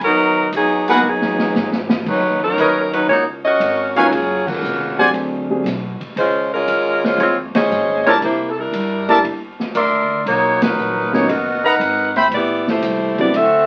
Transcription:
0.01 D#2 F#3 B3 D#4 A#4, ride
0.52 E2, hi-hat pedal, ride
0.57 F#3 B3 D#4 G#4
0.88 F#3 A#3 B3 D#4 G#4 A#4 B4 F#5, ride
0.92 D#3 A#3 B3 F#4
1.03 F#2
1.08 F#3 B3 D#4 G#4
1.21 snare
1.38 snare
1.54 G#2, snare, hi-hat pedal
1.72 snare
1.89 snare
2.06 F#2 F#3 C#4 D#4 B4, kick, crash
2.43 F#3 C#4 D#4 A#4
2.57 D#2 A#4 B4 C#5 D#5, hi-hat pedal, ride
2.93 F#3 C#4 D#4 B4, ride
3.09 C#2 A#3 D#4 F#4 C#5
3.45 C#4 F#4 A#4 D#5
3.60 G#1, hi-hat pedal, ride
3.96 F#3 G#3 A#3 C#4 D#4 F4 G#4 B4 C#5 F5 G#5, ride
4.11 F#1 F#3 C#4 F4 G#4, ride
4.47 C#3 A#3 F4 F#4, kick, crash
4.62 F1, hi-hat pedal
4.99 F#3 A3 C4 D4 G#4 C5 D5 F#5 G#5
5.13 D2, ride
5.50 F#3 A3 C4 D4 G#4
5.64 B1, snare, hi-hat pedal, ride
6.00 muted upright bass stroke, kick, ride
6.16 C#2 G#3 C#4 F4 C5, ride
6.54 G#3 C#4 F4 A#4
6.67 D#2, hi-hat pedal, ride
7.04 G#3 C#4 F4 C5, snare
7.18 F2 G#3 C4 F4 C#5, ride
7.55 C#4 G#4 C5 D#5, muted upright bass stroke, snare, ride
7.70 G#2, hi-hat pedal
8.06 G3 G#3 A3 A#3 C4 D4 E4 F4 A#4 C#5 D5 E5 A5, ride
8.21 C3 A#3 E4 G4 C5, ride
8.49 A4
8.59 G3 D4 E4 A#4
8.72 G2, hi-hat pedal, ride
9.08 G3 A3 A#3 D4 E4 A#4 D5 E5 A5, ride
9.24 E2, ride
9.60 snare
9.75 D2 A#4 D5 E5 C6, hi-hat pedal, ride
10.26 B1 A#3 D#4 F#4 C#5, ride
10.62 F#3 D#4 A#4 B4, snare, ride
10.77 A#1, hi-hat pedal
11.13 F#3 A#3 B3 C#4 D#4 F#4 C#5, snare
11.29 F#1 B3 F#4 A#4 D#5, ride
11.65 D#4 A#4 B4 D#5 F#5 A#5
11.79 G#1, hi-hat pedal, ride
12.16 C5 E5 G5 B5, snare, ride
12.31 A1 B3 E4 G4 D5, ride
12.67 A3 E4 G4 C5, snare
12.82 C2, hi-hat pedal, ride
13.18 F#3 A3 B3 C4 D4 E4 G4 D5, kick, ride
13.33 D2 C4 F#4, ride
13.37 A4 E5

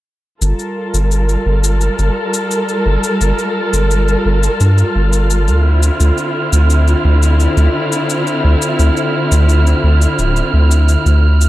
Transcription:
0.41 G1 G3 F4 A4 A#4 F6, shaker
0.59 shaker
0.94 G1, shaker
1.11 shaker
1.29 shaker
1.46 G1
1.64 shaker
1.81 shaker
1.99 G1, shaker
2.34 shaker
2.51 shaker
2.69 shaker
2.86 G1
3.03 shaker
3.21 G1, shaker
3.39 shaker
3.73 G1, shaker
3.91 shaker
4.08 shaker
4.25 G1
4.43 shaker
4.60 G2, shaker
4.78 shaker
4.95 G1
5.13 shaker
5.30 shaker
5.48 D2, shaker
5.65 D3 C4 E4
5.83 shaker
6.00 D2, shaker
6.18 shaker
6.52 D2, shaker
6.70 shaker
6.88 shaker
7.05 D2
7.23 shaker
7.40 shaker
7.57 D2, shaker
7.92 shaker
8.10 shaker
8.27 shaker
8.44 D2
8.62 shaker
8.79 D2, shaker
8.97 shaker
9.32 D2, shaker
9.49 shaker
9.67 shaker
9.84 D2
10.02 shaker
10.19 D1, shaker
10.36 shaker
10.54 D2
10.71 shaker
10.88 shaker
11.06 D2, shaker
11.41 shaker

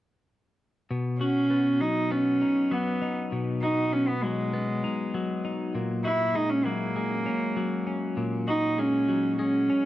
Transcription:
0.91 B2
1.21 C#4 F#4
1.50 B3
1.81 F#3 D#4
2.11 B3 C#4
2.41 D#4
2.71 F#3 B3
3.02 D#4
3.32 B2
3.63 D#4 F#4
3.93 B3 C#4
4.08 B3
4.23 F#3 G#3
4.54 B3
4.84 D#4
5.14 F#3
5.45 D#4
5.75 A#2
6.05 E4 F#4
6.35 G#3 D#4
6.50 C#4
6.65 F#3 A#3
6.96 G#3
7.26 C#4
7.57 F#3
7.87 C#4
8.17 A#2
8.48 D#4 F#4
8.78 G#3 C#4
9.09 F#3
9.39 G#3 C#4
9.70 C#4

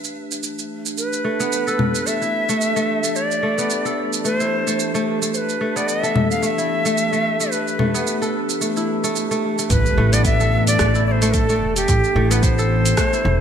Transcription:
Already playing: E3 A3 D4 G4 A5
0.04 shaker
0.32 shaker
0.43 shaker
0.59 shaker
0.86 shaker
0.98 B4, shaker
1.13 shaker
1.24 A3
1.40 B3, shaker
1.52 shaker
1.67 A4, shaker
1.79 low conga
1.95 shaker
2.06 A3 E5, shaker
2.22 E4, shaker
2.49 A3, shaker
2.61 shaker
2.76 A3, shaker
3.03 A3, shaker
3.16 D5, shaker
3.31 shaker
3.43 A3
3.58 B3, shaker
3.70 shaker
3.85 A4, shaker
4.13 shaker
4.25 A3 B4, shaker
4.40 E4 C5, shaker
4.67 A3, shaker
4.79 shaker
4.95 A3, shaker
5.22 A3, shaker
5.34 B4 C5, shaker
5.49 shaker
5.61 A3
5.76 B3 D5, shaker
5.88 E5, shaker
6.03 A4, shaker
6.16 low conga
6.31 F5, shaker
6.42 A3 F5, shaker
6.47 E5
6.58 E4, shaker
6.85 A3, shaker
6.98 shaker
7.12 A3, shaker
7.40 A3, shaker
7.52 B4, shaker
7.68 shaker
7.79 A3, low conga
7.94 B3, shaker
8.07 shaker
8.22 A4, shaker
8.50 shaker
8.61 A3, shaker
8.76 E4, shaker
9.04 A3, shaker
9.16 shaker
9.31 A3, shaker
9.58 A3, shaker
9.70 A1 B4, kick, open hi-hat, impact, shaker
9.86 shaker
9.97 A1 A3
10.13 B3 D5, open hi-hat, shaker
10.25 E5, kick, open hi-hat, shaker
10.40 A4, shaker
10.67 D5, open hi-hat, shaker
10.79 A1 A3, kick, cross-stick, open hi-hat, shaker
10.95 E4, shaker
11.07 D5
11.12 C5
11.22 A3, open hi-hat, shaker
11.34 A4, kick, open hi-hat, shaker
11.49 A3, shaker
11.61 E1
11.76 A3 G4, open hi-hat, shaker
11.88 A1, kick, open hi-hat, shaker
12.04 shaker
12.16 A1 A3
12.31 B3 B4, open hi-hat, shaker
12.43 C5, kick, open hi-hat, shaker
12.58 A4, shaker
12.86 open hi-hat, shaker
12.97 A3, kick, cross-stick, open hi-hat, shaker
13.13 E4, shaker
13.25 E1

